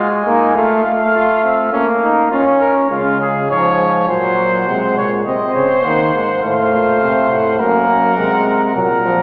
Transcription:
Already playing: G#3 G#5
0.26 A#3 D#4
0.55 A3 F4 F5
0.85 A3
1.15 F4
1.44 C4
1.73 A#3 C#4 F5
2.02 D#4
2.31 C#4 F4 C#5
2.61 A#4
2.90 C#3 G#3 F4 F5
3.21 G#4
3.49 G#2 F3 C#5 G#5
3.57 A#5
3.64 G#5
4.09 A#2 F#3 C5 F#5
4.67 C3 G#3
4.97 A#2 C#5
5.26 C3 C4 C5 D#5
5.54 C#3 C#5
5.84 D#3 A#3 F#5
6.14 G#2
6.42 A2 A3 C5 F5
6.72 A#2
7.01 C3
7.30 A2 F#5
7.58 F#2 A#3 A#4 F#5
7.89 F#2
8.17 C3 G#3
8.75 A#2 F#3 A#4 F#5
9.05 F3

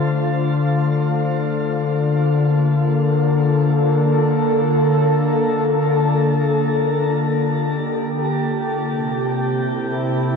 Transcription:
Already playing: D3 A3 F4 C5
1.70 A#3
2.35 A4
7.46 G4
8.84 C3
9.48 E4

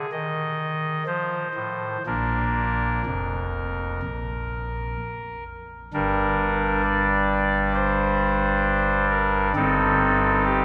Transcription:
0.12 D#3 D#5
1.06 F3 C5
1.55 A2
2.06 A#1 A#2 A#3 D4 A#4
3.06 F1 F2
4.02 A#1
5.93 G1 G2 G3 D4 A#4
6.84 D5
7.75 C5
9.10 A#4
9.55 G1 G2 G3 C4 D#4 A4
10.45 G4

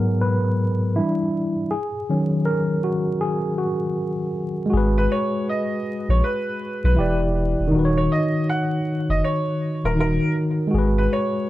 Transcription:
Already playing: G#2 F#3 B3 G#4 A#4
0.21 B4
0.96 E3 G3 D4 E4
1.71 G#4
2.09 D#3 F#3 C#4
2.45 A#4
2.84 F#4
3.21 G#4
3.58 F#4
4.66 G#3
4.70 G#1 F#4 G#4
4.77 B4
4.98 B4
5.12 C#5
5.49 D#5
6.09 A#1 C#5
6.24 B4
6.84 B1 B4
6.95 E1 E3 E4 G4
7.00 D5
7.60 E1
7.67 D#3 D#4
7.73 D#1 F#4
7.79 B4
7.85 C#5
7.97 C#5
8.12 D#5
8.49 F#5
9.09 F#1 D#5
9.24 C#5
9.84 D#1 A#4
9.95 D#3 D#4 F#4
10.00 A#4
10.67 G#3 F#4
10.74 G#1 G#4
10.78 B4
10.98 B4
11.13 C#5

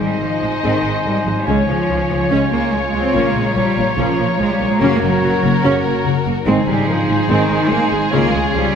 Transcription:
Already playing: G#2 D#4 G#4 C5 D#5 G#5
0.00 G#1 D#3 G3 G#3
0.20 G#1 D#3 F3 D#4
0.42 G#1 D#3 G#3
0.63 G#1 G#2 D#3 G#3 C4 G#4
0.84 G#1 G#3 D#4
1.05 G#1 D#3 G3
1.20 F3
1.25 G#1 G#3 D#4
1.34 G3
1.46 C#2 C#3 G#3 C#4 F4 G#4 C#5
1.68 C#2 F3 G#3
1.89 C#2 F3 F4
2.09 C#2 G#3
2.30 C#2 C#3 G#3 C#4 G#4
2.51 C#2 G#3 A#3 F4
2.72 C#2 F3 G#3
2.87 G#3
2.93 C#2 G#3 F4
3.02 C4
3.13 A#1 A#2 C#3 A#3 C#4 F4 A#5
3.35 A#1 F3 G#3 A#3
3.56 A#1 F3 G3 F4
3.77 A#1 F3 A#3
3.97 A#1 A#2 C#3 F3 A#3 C#4 F4
4.18 A#1 A#3 F4
4.39 A#1 F3 G#3
4.54 G3
4.60 A#1 A#3 F4
4.68 G#3
4.80 F#1 F#2 C#3 A#3 C#4 F#4 A#4 C#5
5.01 F#1 C#3 F#3 A#3
5.22 F#1 F#3 F#4
5.43 F#1 C#3 A#3
5.63 F#1 F#2 C#3 A#3 C#4 F#4
5.85 F#1 A#3 F#4
6.05 F#1 C#3 F#3
6.26 F#1 A#3 F#4
6.46 G#1 G#2 D#3 G#3 C4 D#4 G#4 C5 G#5
6.67 G#1 D#3 G3 G#3
6.87 G#1 D#3 F3 D#4
7.09 G#1 D#3 G#3
7.28 G#1 G#2 D#3 G#3 C4 D#4
7.49 G#1 G#3 D#4
7.70 G#1 D#3 A#3
7.84 G#3
7.91 G#1 G#3 D#4
8.12 C#2 C#3 G#3 A#3 C#4 F4 C#5
8.33 C#2 F3 G#3
8.53 C#2 F3 G3 F4

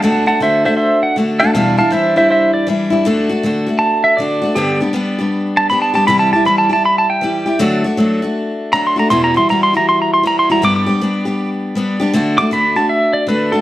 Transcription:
0.02 D3 A3 D4 F#4 F#5
0.26 A3 D4 F#4 F#5 A5
0.40 D3 A3 D4 F#4 C5 E5
0.65 A3 D4 F#4 C5 E5
0.77 C5 E5
1.03 F#5
1.16 D3 A3 D4 F#4
1.40 D4 F#4 F#5 A5
1.44 A3
1.53 E2 B2 E3 G3 D4 E4 F5 A5
1.77 E3 G3 D4 E4 F5 A5
1.90 E3 G3 D4 E4 C5 E5
2.16 E3 G3 D4 E4 C5 E5
2.30 C5 E5
2.54 D5
2.67 E3 G3 D4 E4
2.90 E3 G3 D4 E4
3.05 D3 A3 D4 F#4
3.29 A3 D4 F#4
3.43 D3 A3 D4 F#4
3.66 A3 D4 F#4
3.79 A5
4.04 E5
4.17 D3 A3 D4 D5
4.22 F#4
4.42 A3 D4 F#4
4.55 G2 D3 G3 B3 D4 G4
4.81 G3 B3 D4 G4
4.93 G3 B3 D4 G4
5.18 G3 B3 D4 G4
5.57 A5
5.70 G3 B3 D4 G4 B5
5.82 A5
5.94 G3 B3 D4 G4 A5
6.07 C3 E3 G3 E4 G4 B5
6.19 A5
6.33 G3 E4 G4 A5
6.45 E3 G3 E4 G4 B5
6.58 A5
6.69 G3 E4 G4 A5
6.85 B5
6.98 A5
7.10 G5
7.21 E3 G3 E4 G4
7.46 G3 E4 G4
7.59 D3 F#3 A3 D4 F#4
7.84 A3 D4 F#4
7.97 F#3 A3 D4 F#4
8.22 A3 D4 F#4
8.72 F#3 A3 D4 F#4 A#5
8.87 C6
8.96 A3 D4 F#4 A#5
9.10 E2 B2 E3 G3 E4 F#4 C6
9.24 A#5
9.34 E3 G3 E4 F#4 C6
9.49 E3 G3 E4 F#4 A#5
9.63 C6
9.73 E3 G3 E4 F#4 A#5
9.89 C6
10.02 A#5
10.14 C6
10.23 E3 G3 E4 F#4 A#5
10.39 C6
10.50 E3 G3 E4 F#4 A#5
10.62 G2 D3 G3 B3 D4 G4 D6
10.76 D6
10.86 G3 B3 D4 G4
11.01 G3 B3 D4 G4
11.25 G3 B3 D4 G4
11.75 G3 B3 D4 G4
12.00 G3 B3 D4 G4
12.14 D3 A3 D4 F#4
12.38 A3 D6
12.51 D3 A3 D4 F#4 B5
12.76 A3 D4 F#4 A5
12.89 E5
13.13 D5
13.27 D3 A3 D4 F#4 B4
13.52 A3 D4 F#4 A4

